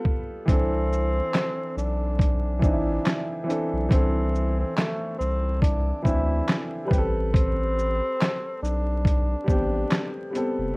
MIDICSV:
0, 0, Header, 1, 5, 480
1, 0, Start_track
1, 0, Key_signature, 0, "major"
1, 0, Tempo, 857143
1, 268, Time_signature, 4, 2, 24, 8
1, 6029, End_track
2, 0, Start_track
2, 0, Title_t, "Tenor saxophone"
2, 0, Program_c, 0, 66
2, 273, Note_on_c, 0, 60, 114
2, 968, Note_off_c, 0, 60, 0
2, 994, Note_on_c, 0, 62, 81
2, 1449, Note_off_c, 0, 62, 0
2, 1472, Note_on_c, 0, 62, 82
2, 1825, Note_off_c, 0, 62, 0
2, 2195, Note_on_c, 0, 60, 93
2, 2547, Note_off_c, 0, 60, 0
2, 2571, Note_on_c, 0, 60, 77
2, 2661, Note_off_c, 0, 60, 0
2, 2667, Note_on_c, 0, 57, 83
2, 2885, Note_off_c, 0, 57, 0
2, 2904, Note_on_c, 0, 60, 86
2, 3124, Note_off_c, 0, 60, 0
2, 3145, Note_on_c, 0, 62, 85
2, 3364, Note_off_c, 0, 62, 0
2, 3382, Note_on_c, 0, 64, 81
2, 3740, Note_off_c, 0, 64, 0
2, 4108, Note_on_c, 0, 60, 119
2, 4806, Note_off_c, 0, 60, 0
2, 4830, Note_on_c, 0, 62, 83
2, 5287, Note_off_c, 0, 62, 0
2, 5314, Note_on_c, 0, 62, 85
2, 5666, Note_off_c, 0, 62, 0
2, 6029, End_track
3, 0, Start_track
3, 0, Title_t, "Upright piano"
3, 0, Program_c, 1, 0
3, 0, Control_c, 1, 64, 127
3, 0, Note_on_c, 1, 55, 81
3, 0, Note_on_c, 1, 59, 75
3, 0, Note_on_c, 1, 65, 74
3, 0, Note_on_c, 1, 69, 96
3, 176, Note_off_c, 1, 55, 0
3, 188, Note_off_c, 1, 65, 0
3, 194, Note_off_c, 1, 69, 0
3, 199, Note_off_c, 1, 59, 0
3, 255, Note_on_c, 1, 52, 81
3, 265, Note_on_c, 1, 60, 74
3, 275, Control_c, 1, 64, 0
3, 277, Note_on_c, 1, 62, 74
3, 291, Note_on_c, 1, 69, 90
3, 369, Control_c, 1, 64, 127
3, 963, Note_off_c, 1, 52, 0
3, 969, Note_off_c, 1, 60, 0
3, 975, Note_off_c, 1, 62, 0
3, 982, Note_off_c, 1, 69, 0
3, 1451, Note_on_c, 1, 52, 74
3, 1464, Note_on_c, 1, 60, 76
3, 1475, Note_on_c, 1, 62, 76
3, 1488, Note_on_c, 1, 63, 73
3, 1520, Note_off_c, 1, 63, 0
3, 1524, Note_on_c, 1, 64, 84
3, 1825, Note_off_c, 1, 52, 0
3, 1832, Note_off_c, 1, 60, 0
3, 1837, Note_off_c, 1, 62, 0
3, 1862, Note_off_c, 1, 64, 0
3, 1926, Note_on_c, 1, 52, 82
3, 1939, Note_on_c, 1, 60, 69
3, 1951, Note_on_c, 1, 62, 69
3, 1963, Note_on_c, 1, 69, 82
3, 2122, Note_off_c, 1, 52, 0
3, 2128, Note_off_c, 1, 60, 0
3, 2134, Note_off_c, 1, 62, 0
3, 2140, Note_off_c, 1, 69, 0
3, 2176, Note_on_c, 1, 52, 79
3, 2186, Note_on_c, 1, 60, 80
3, 2199, Note_on_c, 1, 62, 68
3, 2210, Note_on_c, 1, 69, 91
3, 2884, Note_off_c, 1, 52, 0
3, 2889, Note_off_c, 1, 60, 0
3, 2896, Note_off_c, 1, 62, 0
3, 2901, Note_off_c, 1, 69, 0
3, 3374, Note_on_c, 1, 52, 74
3, 3387, Note_on_c, 1, 60, 78
3, 3399, Note_on_c, 1, 62, 77
3, 3411, Note_on_c, 1, 64, 91
3, 3747, Note_off_c, 1, 52, 0
3, 3753, Note_off_c, 1, 60, 0
3, 3759, Note_off_c, 1, 62, 0
3, 3765, Note_off_c, 1, 64, 0
3, 3838, Note_on_c, 1, 55, 86
3, 3851, Note_on_c, 1, 71, 82
3, 3864, Note_on_c, 1, 60, 81
3, 3874, Note_on_c, 1, 67, 87
3, 3876, Control_c, 1, 64, 0
3, 3909, Note_on_c, 1, 69, 96
3, 3913, Note_off_c, 1, 67, 0
3, 3987, Control_c, 1, 64, 127
3, 4628, Note_off_c, 1, 55, 0
3, 4635, Note_off_c, 1, 71, 0
3, 4641, Note_off_c, 1, 60, 0
3, 4664, Note_off_c, 1, 69, 0
3, 5287, Note_on_c, 1, 55, 75
3, 5299, Note_on_c, 1, 59, 75
3, 5312, Note_on_c, 1, 60, 75
3, 5322, Note_on_c, 1, 67, 90
3, 5663, Note_off_c, 1, 55, 0
3, 5669, Note_off_c, 1, 59, 0
3, 5676, Note_off_c, 1, 60, 0
3, 5681, Note_off_c, 1, 67, 0
3, 5770, Note_on_c, 1, 55, 68
3, 5784, Note_on_c, 1, 59, 77
3, 5797, Note_on_c, 1, 60, 70
3, 5806, Note_on_c, 1, 69, 81
3, 5964, Note_off_c, 1, 55, 0
3, 5971, Note_off_c, 1, 59, 0
3, 5977, Note_off_c, 1, 60, 0
3, 5981, Note_off_c, 1, 69, 0
3, 6011, Note_on_c, 1, 55, 83
3, 6029, Note_off_c, 1, 55, 0
3, 6029, End_track
4, 0, Start_track
4, 0, Title_t, "Sub bass"
4, 0, Program_c, 2, 38
4, 268, Note_on_c, 2, 36, 103
4, 677, Note_off_c, 2, 36, 0
4, 990, Note_on_c, 2, 35, 87
4, 1470, Note_on_c, 2, 33, 90
4, 1479, Note_off_c, 2, 35, 0
4, 1674, Note_off_c, 2, 33, 0
4, 2089, Note_on_c, 2, 35, 84
4, 2175, Note_off_c, 2, 35, 0
4, 2189, Note_on_c, 2, 36, 110
4, 2598, Note_off_c, 2, 36, 0
4, 2912, Note_on_c, 2, 36, 88
4, 3320, Note_off_c, 2, 36, 0
4, 3390, Note_on_c, 2, 38, 97
4, 3594, Note_off_c, 2, 38, 0
4, 3871, Note_on_c, 2, 33, 107
4, 4483, Note_off_c, 2, 33, 0
4, 4830, Note_on_c, 2, 35, 102
4, 5238, Note_off_c, 2, 35, 0
4, 5310, Note_on_c, 2, 33, 92
4, 5514, Note_off_c, 2, 33, 0
4, 5926, Note_on_c, 2, 29, 85
4, 6013, Note_off_c, 2, 29, 0
4, 6029, End_track
5, 0, Start_track
5, 0, Title_t, "Drums"
5, 28, Note_on_c, 9, 36, 85
5, 84, Note_off_c, 9, 36, 0
5, 268, Note_on_c, 9, 36, 122
5, 275, Note_on_c, 9, 42, 77
5, 324, Note_off_c, 9, 36, 0
5, 331, Note_off_c, 9, 42, 0
5, 518, Note_on_c, 9, 82, 43
5, 574, Note_off_c, 9, 82, 0
5, 751, Note_on_c, 9, 39, 96
5, 753, Note_on_c, 9, 42, 70
5, 755, Note_on_c, 9, 38, 103
5, 807, Note_off_c, 9, 39, 0
5, 809, Note_off_c, 9, 42, 0
5, 811, Note_off_c, 9, 38, 0
5, 998, Note_on_c, 9, 82, 50
5, 1054, Note_off_c, 9, 82, 0
5, 1227, Note_on_c, 9, 36, 90
5, 1240, Note_on_c, 9, 42, 64
5, 1283, Note_off_c, 9, 36, 0
5, 1296, Note_off_c, 9, 42, 0
5, 1469, Note_on_c, 9, 36, 91
5, 1474, Note_on_c, 9, 82, 42
5, 1525, Note_off_c, 9, 36, 0
5, 1530, Note_off_c, 9, 82, 0
5, 1714, Note_on_c, 9, 39, 93
5, 1718, Note_on_c, 9, 38, 116
5, 1720, Note_on_c, 9, 42, 62
5, 1770, Note_off_c, 9, 39, 0
5, 1774, Note_off_c, 9, 38, 0
5, 1776, Note_off_c, 9, 42, 0
5, 1961, Note_on_c, 9, 42, 49
5, 1961, Note_on_c, 9, 82, 46
5, 2017, Note_off_c, 9, 42, 0
5, 2017, Note_off_c, 9, 82, 0
5, 2188, Note_on_c, 9, 36, 118
5, 2194, Note_on_c, 9, 42, 82
5, 2244, Note_off_c, 9, 36, 0
5, 2250, Note_off_c, 9, 42, 0
5, 2437, Note_on_c, 9, 82, 40
5, 2493, Note_off_c, 9, 82, 0
5, 2673, Note_on_c, 9, 39, 98
5, 2675, Note_on_c, 9, 42, 66
5, 2677, Note_on_c, 9, 38, 117
5, 2729, Note_off_c, 9, 39, 0
5, 2731, Note_off_c, 9, 42, 0
5, 2733, Note_off_c, 9, 38, 0
5, 2918, Note_on_c, 9, 82, 51
5, 2974, Note_off_c, 9, 82, 0
5, 3147, Note_on_c, 9, 36, 90
5, 3159, Note_on_c, 9, 42, 67
5, 3203, Note_off_c, 9, 36, 0
5, 3215, Note_off_c, 9, 42, 0
5, 3389, Note_on_c, 9, 36, 94
5, 3396, Note_on_c, 9, 82, 44
5, 3445, Note_off_c, 9, 36, 0
5, 3452, Note_off_c, 9, 82, 0
5, 3632, Note_on_c, 9, 39, 93
5, 3636, Note_on_c, 9, 38, 116
5, 3638, Note_on_c, 9, 42, 59
5, 3688, Note_off_c, 9, 39, 0
5, 3692, Note_off_c, 9, 38, 0
5, 3694, Note_off_c, 9, 42, 0
5, 3869, Note_on_c, 9, 36, 94
5, 3882, Note_on_c, 9, 42, 45
5, 3882, Note_on_c, 9, 82, 45
5, 3925, Note_off_c, 9, 36, 0
5, 3938, Note_off_c, 9, 42, 0
5, 3938, Note_off_c, 9, 82, 0
5, 4110, Note_on_c, 9, 36, 120
5, 4120, Note_on_c, 9, 42, 82
5, 4166, Note_off_c, 9, 36, 0
5, 4176, Note_off_c, 9, 42, 0
5, 4360, Note_on_c, 9, 82, 46
5, 4416, Note_off_c, 9, 82, 0
5, 4598, Note_on_c, 9, 39, 99
5, 4600, Note_on_c, 9, 42, 68
5, 4602, Note_on_c, 9, 38, 115
5, 4654, Note_off_c, 9, 39, 0
5, 4656, Note_off_c, 9, 42, 0
5, 4658, Note_off_c, 9, 38, 0
5, 4842, Note_on_c, 9, 82, 52
5, 4898, Note_off_c, 9, 82, 0
5, 5068, Note_on_c, 9, 36, 90
5, 5081, Note_on_c, 9, 42, 62
5, 5124, Note_off_c, 9, 36, 0
5, 5137, Note_off_c, 9, 42, 0
5, 5308, Note_on_c, 9, 36, 90
5, 5317, Note_on_c, 9, 82, 43
5, 5364, Note_off_c, 9, 36, 0
5, 5373, Note_off_c, 9, 82, 0
5, 5550, Note_on_c, 9, 39, 92
5, 5554, Note_on_c, 9, 38, 111
5, 5556, Note_on_c, 9, 42, 60
5, 5606, Note_off_c, 9, 39, 0
5, 5610, Note_off_c, 9, 38, 0
5, 5612, Note_off_c, 9, 42, 0
5, 5796, Note_on_c, 9, 42, 48
5, 5796, Note_on_c, 9, 82, 45
5, 5852, Note_off_c, 9, 42, 0
5, 5852, Note_off_c, 9, 82, 0
5, 6029, End_track
0, 0, End_of_file